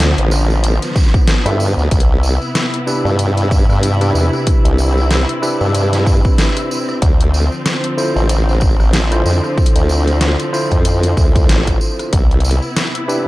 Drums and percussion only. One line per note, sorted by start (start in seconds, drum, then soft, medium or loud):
0.00 snare loud
0.00 closed hi-hat medium
0.00 tambourine medium
0.18 closed hi-hat medium
0.31 cross-stick soft
0.31 tambourine loud
0.50 tambourine soft
0.64 closed hi-hat medium
0.64 tambourine medium
0.82 snare soft
0.82 closed hi-hat medium
0.82 tambourine soft
0.85 snare soft
0.91 snare soft
0.95 kick loud
0.95 snare soft
0.95 tambourine loud
1.02 snare soft
1.06 snare soft
1.14 kick loud
1.14 tambourine soft
1.27 snare loud
1.27 closed hi-hat medium
1.27 tambourine medium
1.46 cross-stick soft
1.46 closed hi-hat medium
1.46 tambourine soft
1.60 tambourine medium
1.78 cross-stick soft
1.78 tambourine soft
1.80 cross-stick soft
1.86 cross-stick soft
1.91 kick loud
1.91 closed hi-hat medium
1.91 tambourine soft
2.00 closed hi-hat medium
2.23 tambourine medium
2.42 tambourine soft
2.55 snare loud
2.55 closed hi-hat medium
2.55 tambourine medium
2.74 closed hi-hat soft
2.87 tambourine medium
3.06 tambourine soft
3.19 closed hi-hat medium
3.19 tambourine soft
3.37 closed hi-hat medium
3.37 tambourine soft
3.51 kick loud
3.51 tambourine medium
3.70 cross-stick soft
3.70 tambourine soft
3.73 cross-stick soft
3.76 cross-stick soft
3.79 cross-stick soft
3.79 closed hi-hat medium
3.79 tambourine medium
3.97 cross-stick soft
4.01 cross-stick soft
4.01 closed hi-hat soft
4.01 tambourine soft
4.11 cross-stick soft
4.15 tambourine medium
4.21 cross-stick soft
4.33 cross-stick soft
4.33 tambourine soft
4.47 kick loud
4.47 closed hi-hat medium
4.47 tambourine soft
4.65 closed hi-hat medium
4.78 tambourine medium
4.98 tambourine soft
5.11 snare loud
5.11 closed hi-hat medium
5.11 tambourine medium
5.29 closed hi-hat soft
5.43 cross-stick soft
5.43 tambourine medium
5.61 tambourine soft
5.75 closed hi-hat medium
5.75 tambourine medium
5.93 snare soft
5.93 closed hi-hat medium
5.93 tambourine soft
6.06 kick loud
6.06 tambourine medium
6.25 kick loud
6.25 tambourine soft
6.38 snare loud
6.38 closed hi-hat medium
6.38 tambourine soft
6.57 cross-stick soft
6.57 closed hi-hat medium
6.57 tambourine soft
6.71 tambourine medium
6.89 cross-stick soft
6.89 tambourine soft
7.02 kick loud
7.02 closed hi-hat medium
7.02 tambourine soft
7.21 closed hi-hat medium
7.34 tambourine medium
7.52 tambourine soft
7.66 snare loud
7.66 closed hi-hat medium
7.66 tambourine soft
7.84 closed hi-hat medium
7.98 tambourine medium
8.16 tambourine soft
8.29 closed hi-hat medium
8.29 tambourine soft
8.49 tambourine soft
8.61 kick loud
8.61 tambourine medium
8.80 cross-stick medium
8.80 tambourine soft
8.93 snare loud
8.93 closed hi-hat medium
8.93 tambourine soft
9.12 cross-stick soft
9.12 closed hi-hat medium
9.12 tambourine soft
9.26 tambourine loud
9.44 cross-stick soft
9.44 tambourine soft
9.58 kick loud
9.58 tambourine soft
9.66 closed hi-hat medium
9.76 closed hi-hat medium
9.76 tambourine soft
9.89 tambourine medium
10.07 closed hi-hat soft
10.07 tambourine soft
10.21 snare loud
10.21 closed hi-hat medium
10.21 tambourine soft
10.40 closed hi-hat medium
10.40 tambourine soft
10.53 cross-stick soft
10.53 tambourine medium
10.71 kick medium
10.71 closed hi-hat soft
10.71 tambourine soft
10.85 closed hi-hat medium
10.85 tambourine medium
11.03 closed hi-hat medium
11.03 tambourine soft
11.17 kick loud
11.17 tambourine loud
11.35 kick loud
11.35 closed hi-hat soft
11.35 tambourine soft
11.49 snare loud
11.49 closed hi-hat medium
11.49 tambourine soft
11.67 kick medium
11.67 cross-stick soft
11.67 closed hi-hat medium
11.67 tambourine soft
11.81 tambourine medium
11.99 cross-stick soft
11.99 closed hi-hat soft
11.99 tambourine soft
12.13 kick loud
12.13 closed hi-hat medium
12.13 tambourine medium
12.31 closed hi-hat soft
12.40 closed hi-hat soft
12.44 tambourine loud
12.51 closed hi-hat soft
12.62 tambourine soft
12.76 snare loud
12.76 closed hi-hat medium
12.76 tambourine medium
12.95 closed hi-hat medium
13.09 tambourine medium